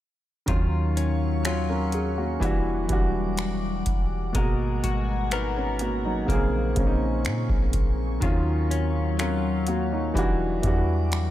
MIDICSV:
0, 0, Header, 1, 6, 480
1, 0, Start_track
1, 0, Key_signature, -6, "minor"
1, 0, Tempo, 967742
1, 238, Time_signature, 4, 2, 24, 8
1, 5608, End_track
2, 0, Start_track
2, 0, Title_t, "Ambient pad"
2, 0, Program_c, 0, 92
2, 237, Note_on_c, 0, 77, 69
2, 238, Note_on_c, 0, 54, 73
2, 239, Note_on_c, 0, 85, 84
2, 1188, Note_off_c, 0, 54, 0
2, 1188, Note_off_c, 0, 77, 0
2, 1189, Note_off_c, 0, 85, 0
2, 1200, Note_on_c, 0, 55, 75
2, 1200, Note_on_c, 0, 78, 65
2, 1202, Note_on_c, 0, 86, 78
2, 2150, Note_off_c, 0, 55, 0
2, 2150, Note_off_c, 0, 86, 0
2, 2158, Note_on_c, 0, 80, 83
2, 2160, Note_on_c, 0, 82, 78
2, 3100, Note_off_c, 0, 78, 0
2, 3108, Note_off_c, 0, 80, 0
2, 3110, Note_off_c, 0, 82, 0
2, 3120, Note_on_c, 0, 80, 68
2, 3122, Note_on_c, 0, 60, 75
2, 3122, Note_on_c, 0, 85, 76
2, 4069, Note_off_c, 0, 80, 0
2, 4070, Note_off_c, 0, 60, 0
2, 4076, Note_on_c, 0, 54, 77
2, 4076, Note_on_c, 0, 77, 68
2, 5021, Note_off_c, 0, 85, 0
2, 5028, Note_off_c, 0, 54, 0
2, 5028, Note_off_c, 0, 77, 0
2, 5039, Note_on_c, 0, 55, 71
2, 5039, Note_on_c, 0, 78, 63
2, 5039, Note_on_c, 0, 86, 82
2, 5608, Note_off_c, 0, 55, 0
2, 5608, Note_off_c, 0, 78, 0
2, 5608, Note_off_c, 0, 86, 0
2, 5608, End_track
3, 0, Start_track
3, 0, Title_t, "Clean electric guitar"
3, 0, Program_c, 1, 27
3, 239, Note_on_c, 1, 51, 74
3, 242, Note_on_c, 1, 65, 64
3, 481, Note_on_c, 1, 61, 57
3, 717, Note_off_c, 1, 61, 0
3, 720, Note_off_c, 1, 65, 0
3, 720, Note_on_c, 1, 54, 59
3, 723, Note_on_c, 1, 61, 57
3, 726, Note_on_c, 1, 65, 62
3, 1199, Note_off_c, 1, 51, 0
3, 1201, Note_on_c, 1, 52, 81
3, 1249, Note_off_c, 1, 61, 0
3, 1250, Note_off_c, 1, 65, 0
3, 2157, Note_off_c, 1, 54, 0
3, 2159, Note_on_c, 1, 56, 73
3, 2162, Note_on_c, 1, 70, 61
3, 2208, Note_off_c, 1, 52, 0
3, 2399, Note_on_c, 1, 66, 57
3, 2636, Note_off_c, 1, 66, 0
3, 2638, Note_on_c, 1, 59, 60
3, 2641, Note_on_c, 1, 66, 59
3, 2642, Note_off_c, 1, 70, 0
3, 2644, Note_on_c, 1, 70, 63
3, 3117, Note_off_c, 1, 56, 0
3, 3119, Note_on_c, 1, 58, 80
3, 3166, Note_off_c, 1, 59, 0
3, 3168, Note_off_c, 1, 66, 0
3, 4080, Note_on_c, 1, 51, 76
3, 4083, Note_on_c, 1, 65, 66
3, 4127, Note_off_c, 1, 58, 0
3, 4319, Note_on_c, 1, 61, 59
3, 4380, Note_off_c, 1, 70, 0
3, 4555, Note_off_c, 1, 61, 0
3, 4558, Note_off_c, 1, 65, 0
3, 4558, Note_on_c, 1, 54, 58
3, 4561, Note_on_c, 1, 61, 61
3, 4564, Note_on_c, 1, 65, 65
3, 5034, Note_off_c, 1, 51, 0
3, 5036, Note_on_c, 1, 52, 79
3, 5088, Note_off_c, 1, 61, 0
3, 5089, Note_off_c, 1, 65, 0
3, 5608, Note_off_c, 1, 52, 0
3, 5608, Note_off_c, 1, 54, 0
3, 5608, End_track
4, 0, Start_track
4, 0, Title_t, "Grand piano"
4, 0, Program_c, 2, 0
4, 228, Note_on_c, 2, 51, 80
4, 237, Note_on_c, 2, 54, 71
4, 245, Note_on_c, 2, 61, 68
4, 253, Note_on_c, 2, 65, 80
4, 341, Control_c, 2, 64, 127
4, 716, Note_off_c, 2, 65, 0
4, 721, Note_off_c, 2, 61, 0
4, 722, Note_on_c, 2, 73, 63
4, 724, Note_on_c, 2, 65, 53
4, 834, Note_off_c, 2, 73, 0
4, 835, Note_off_c, 2, 65, 0
4, 841, Note_on_c, 2, 70, 65
4, 843, Note_on_c, 2, 61, 56
4, 880, Note_off_c, 2, 51, 0
4, 884, Note_off_c, 2, 54, 0
4, 954, Note_off_c, 2, 70, 0
4, 955, Note_off_c, 2, 61, 0
4, 961, Note_on_c, 2, 68, 68
4, 1074, Note_off_c, 2, 68, 0
4, 1081, Note_on_c, 2, 66, 65
4, 1084, Note_on_c, 2, 58, 53
4, 1189, Note_on_c, 2, 52, 85
4, 1197, Note_on_c, 2, 55, 73
4, 1204, Note_on_c, 2, 62, 72
4, 1205, Control_c, 2, 64, 0
4, 1206, Note_off_c, 2, 66, 0
4, 1213, Note_on_c, 2, 66, 86
4, 1295, Control_c, 2, 64, 127
4, 1309, Note_off_c, 2, 58, 0
4, 1386, Note_off_c, 2, 52, 0
4, 1390, Note_off_c, 2, 55, 0
4, 1393, Note_off_c, 2, 62, 0
4, 1398, Note_off_c, 2, 66, 0
4, 1428, Note_on_c, 2, 52, 76
4, 1437, Note_on_c, 2, 55, 70
4, 1445, Note_on_c, 2, 62, 74
4, 1452, Note_on_c, 2, 66, 85
4, 1918, Note_off_c, 2, 52, 0
4, 1922, Note_off_c, 2, 55, 0
4, 1927, Note_off_c, 2, 62, 0
4, 1930, Note_off_c, 2, 66, 0
4, 2147, Note_on_c, 2, 47, 75
4, 2155, Note_on_c, 2, 56, 67
4, 2163, Note_on_c, 2, 58, 74
4, 2165, Control_c, 2, 64, 0
4, 2171, Note_on_c, 2, 66, 81
4, 2265, Control_c, 2, 64, 127
4, 2637, Note_off_c, 2, 56, 0
4, 2640, Note_off_c, 2, 58, 0
4, 2642, Note_on_c, 2, 71, 63
4, 2644, Note_on_c, 2, 63, 54
4, 2645, Note_off_c, 2, 66, 0
4, 2754, Note_off_c, 2, 71, 0
4, 2755, Note_off_c, 2, 63, 0
4, 2762, Note_on_c, 2, 70, 69
4, 2765, Note_on_c, 2, 61, 58
4, 2799, Note_off_c, 2, 47, 0
4, 2874, Note_off_c, 2, 70, 0
4, 2876, Note_off_c, 2, 61, 0
4, 2881, Note_on_c, 2, 66, 65
4, 2885, Note_on_c, 2, 58, 58
4, 2994, Note_off_c, 2, 66, 0
4, 2996, Note_off_c, 2, 58, 0
4, 3000, Note_on_c, 2, 63, 64
4, 3002, Note_on_c, 2, 54, 59
4, 3107, Note_on_c, 2, 49, 78
4, 3117, Note_on_c, 2, 58, 78
4, 3124, Control_c, 2, 64, 0
4, 3124, Note_on_c, 2, 60, 74
4, 3132, Note_on_c, 2, 68, 93
4, 3225, Control_c, 2, 64, 127
4, 3227, Note_off_c, 2, 63, 0
4, 3228, Note_off_c, 2, 54, 0
4, 3305, Note_off_c, 2, 49, 0
4, 3310, Note_off_c, 2, 58, 0
4, 3313, Note_off_c, 2, 60, 0
4, 3317, Note_off_c, 2, 68, 0
4, 3348, Note_on_c, 2, 49, 77
4, 3355, Note_on_c, 2, 58, 74
4, 3365, Note_on_c, 2, 60, 73
4, 3373, Note_on_c, 2, 61, 75
4, 3398, Note_off_c, 2, 61, 0
4, 3405, Note_on_c, 2, 63, 89
4, 3838, Note_off_c, 2, 49, 0
4, 3842, Note_off_c, 2, 58, 0
4, 3847, Note_off_c, 2, 60, 0
4, 3867, Note_off_c, 2, 63, 0
4, 4068, Note_on_c, 2, 51, 78
4, 4078, Note_on_c, 2, 54, 71
4, 4084, Control_c, 2, 64, 0
4, 4086, Note_on_c, 2, 61, 73
4, 4093, Note_on_c, 2, 65, 90
4, 4176, Control_c, 2, 64, 127
4, 4558, Note_off_c, 2, 54, 0
4, 4560, Note_off_c, 2, 61, 0
4, 4563, Note_on_c, 2, 70, 63
4, 4566, Note_off_c, 2, 65, 0
4, 4568, Note_on_c, 2, 61, 53
4, 4720, Note_off_c, 2, 51, 0
4, 4789, Note_off_c, 2, 70, 0
4, 4791, Note_off_c, 2, 61, 0
4, 4801, Note_on_c, 2, 66, 69
4, 4804, Note_on_c, 2, 58, 58
4, 4914, Note_off_c, 2, 66, 0
4, 4915, Note_off_c, 2, 58, 0
4, 4921, Note_on_c, 2, 63, 67
4, 4924, Note_on_c, 2, 54, 57
4, 5029, Note_on_c, 2, 52, 87
4, 5037, Note_on_c, 2, 55, 76
4, 5045, Control_c, 2, 64, 0
4, 5045, Note_on_c, 2, 62, 77
4, 5052, Note_on_c, 2, 66, 97
4, 5141, Control_c, 2, 64, 127
4, 5148, Note_off_c, 2, 63, 0
4, 5149, Note_off_c, 2, 54, 0
4, 5226, Note_off_c, 2, 52, 0
4, 5229, Note_off_c, 2, 55, 0
4, 5234, Note_off_c, 2, 62, 0
4, 5237, Note_off_c, 2, 66, 0
4, 5269, Note_on_c, 2, 52, 79
4, 5275, Note_on_c, 2, 55, 75
4, 5284, Note_on_c, 2, 62, 72
4, 5292, Note_on_c, 2, 66, 92
4, 5608, Note_off_c, 2, 52, 0
4, 5608, Note_off_c, 2, 55, 0
4, 5608, Note_off_c, 2, 62, 0
4, 5608, Note_off_c, 2, 66, 0
4, 5608, End_track
5, 0, Start_track
5, 0, Title_t, "808-style bass"
5, 0, Program_c, 3, 38
5, 238, Note_on_c, 3, 39, 103
5, 1178, Note_off_c, 3, 39, 0
5, 1198, Note_on_c, 3, 28, 102
5, 1428, Note_off_c, 3, 28, 0
5, 1438, Note_on_c, 3, 28, 100
5, 1899, Note_off_c, 3, 28, 0
5, 1918, Note_on_c, 3, 28, 90
5, 2148, Note_off_c, 3, 28, 0
5, 2158, Note_on_c, 3, 32, 109
5, 2389, Note_off_c, 3, 32, 0
5, 2399, Note_on_c, 3, 32, 90
5, 3099, Note_off_c, 3, 32, 0
5, 3119, Note_on_c, 3, 34, 109
5, 3349, Note_off_c, 3, 34, 0
5, 3358, Note_on_c, 3, 34, 101
5, 3598, Note_on_c, 3, 46, 95
5, 3606, Note_off_c, 3, 34, 0
5, 3712, Note_off_c, 3, 46, 0
5, 3718, Note_on_c, 3, 34, 98
5, 4064, Note_off_c, 3, 34, 0
5, 4079, Note_on_c, 3, 39, 102
5, 5019, Note_off_c, 3, 39, 0
5, 5037, Note_on_c, 3, 28, 106
5, 5268, Note_off_c, 3, 28, 0
5, 5278, Note_on_c, 3, 40, 99
5, 5608, Note_off_c, 3, 40, 0
5, 5608, End_track
6, 0, Start_track
6, 0, Title_t, "Drums"
6, 237, Note_on_c, 9, 42, 67
6, 238, Note_on_c, 9, 36, 110
6, 286, Note_off_c, 9, 42, 0
6, 287, Note_off_c, 9, 36, 0
6, 481, Note_on_c, 9, 42, 70
6, 531, Note_off_c, 9, 42, 0
6, 718, Note_on_c, 9, 42, 63
6, 720, Note_on_c, 9, 26, 105
6, 768, Note_off_c, 9, 42, 0
6, 770, Note_off_c, 9, 26, 0
6, 954, Note_on_c, 9, 42, 61
6, 1004, Note_off_c, 9, 42, 0
6, 1198, Note_on_c, 9, 36, 82
6, 1203, Note_on_c, 9, 42, 71
6, 1247, Note_off_c, 9, 36, 0
6, 1253, Note_off_c, 9, 42, 0
6, 1434, Note_on_c, 9, 42, 61
6, 1438, Note_on_c, 9, 36, 85
6, 1484, Note_off_c, 9, 42, 0
6, 1487, Note_off_c, 9, 36, 0
6, 1674, Note_on_c, 9, 42, 58
6, 1679, Note_on_c, 9, 26, 102
6, 1723, Note_off_c, 9, 42, 0
6, 1729, Note_off_c, 9, 26, 0
6, 1914, Note_on_c, 9, 42, 72
6, 1918, Note_on_c, 9, 36, 84
6, 1964, Note_off_c, 9, 42, 0
6, 1967, Note_off_c, 9, 36, 0
6, 2156, Note_on_c, 9, 42, 70
6, 2157, Note_on_c, 9, 36, 108
6, 2206, Note_off_c, 9, 42, 0
6, 2207, Note_off_c, 9, 36, 0
6, 2399, Note_on_c, 9, 42, 69
6, 2449, Note_off_c, 9, 42, 0
6, 2636, Note_on_c, 9, 42, 66
6, 2638, Note_on_c, 9, 26, 114
6, 2685, Note_off_c, 9, 42, 0
6, 2688, Note_off_c, 9, 26, 0
6, 2873, Note_on_c, 9, 42, 58
6, 2923, Note_off_c, 9, 42, 0
6, 3118, Note_on_c, 9, 36, 78
6, 3123, Note_on_c, 9, 42, 66
6, 3167, Note_off_c, 9, 36, 0
6, 3173, Note_off_c, 9, 42, 0
6, 3353, Note_on_c, 9, 42, 63
6, 3358, Note_on_c, 9, 36, 87
6, 3403, Note_off_c, 9, 42, 0
6, 3407, Note_off_c, 9, 36, 0
6, 3595, Note_on_c, 9, 42, 58
6, 3601, Note_on_c, 9, 26, 103
6, 3645, Note_off_c, 9, 42, 0
6, 3650, Note_off_c, 9, 26, 0
6, 3717, Note_on_c, 9, 36, 91
6, 3767, Note_off_c, 9, 36, 0
6, 3835, Note_on_c, 9, 42, 75
6, 3838, Note_on_c, 9, 36, 88
6, 3884, Note_off_c, 9, 42, 0
6, 3887, Note_off_c, 9, 36, 0
6, 4077, Note_on_c, 9, 42, 69
6, 4078, Note_on_c, 9, 36, 106
6, 4127, Note_off_c, 9, 42, 0
6, 4128, Note_off_c, 9, 36, 0
6, 4322, Note_on_c, 9, 42, 70
6, 4372, Note_off_c, 9, 42, 0
6, 4559, Note_on_c, 9, 42, 68
6, 4561, Note_on_c, 9, 26, 113
6, 4609, Note_off_c, 9, 42, 0
6, 4611, Note_off_c, 9, 26, 0
6, 4794, Note_on_c, 9, 42, 58
6, 4844, Note_off_c, 9, 42, 0
6, 5037, Note_on_c, 9, 36, 79
6, 5043, Note_on_c, 9, 42, 71
6, 5087, Note_off_c, 9, 36, 0
6, 5093, Note_off_c, 9, 42, 0
6, 5274, Note_on_c, 9, 42, 58
6, 5277, Note_on_c, 9, 36, 84
6, 5324, Note_off_c, 9, 42, 0
6, 5327, Note_off_c, 9, 36, 0
6, 5514, Note_on_c, 9, 42, 60
6, 5520, Note_on_c, 9, 26, 101
6, 5564, Note_off_c, 9, 42, 0
6, 5570, Note_off_c, 9, 26, 0
6, 5608, End_track
0, 0, End_of_file